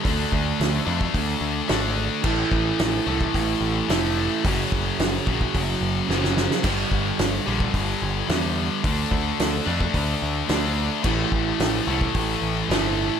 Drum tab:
CC |----------------|x---------------|----------------|x---------------|
HH |o---o---o---o---|----o---o---o---|o---o---o-------|o---o---o---o---|
SD |----o-------o---|----o-------o---|----o-------oooo|----o-------o---|
BD |o-o----oo-------|o-o----oo-------|o-o---ooo-------|o-o----oo-------|

CC |----------------|x---------------|
HH |o---o---o---o---|----o---o---o---|
SD |----o-------o---|----o-------o---|
BD |o-o----oo-------|o-o----oo-------|